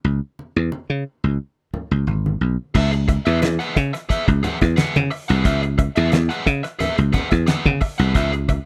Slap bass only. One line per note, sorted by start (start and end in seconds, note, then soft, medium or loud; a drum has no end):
0.04 0.19 C#2 medium
0.56 0.69 E2 medium
0.90 1.03 C#3 medium
1.24 1.37 C#2 medium
1.73 muted slap bass stroke soft
1.91 2.04 C#2 medium
2.07 2.35 G#1 medium
2.41 2.56 B1 medium
2.75 3.18 C#2 medium
3.26 3.40 E2 loud
3.42 3.57 E2 loud
3.77 3.91 C#3 loud
4.10 muted slap bass stroke medium
4.28 4.41 C#2 medium
4.62 4.75 E2 medium
4.96 5.09 C#3 loud
5.30 5.45 C2 medium
5.45 5.88 C#2 loud
5.97 6.10 E2 loud
6.13 6.28 E2 medium
6.46 6.61 C#3 loud
6.81 muted slap bass stroke soft
6.98 7.11 C#2 medium
7.32 7.45 E2 medium
7.66 7.79 C#3 loud
7.99 8.15 C2 medium
8.15 8.58 C#2 loud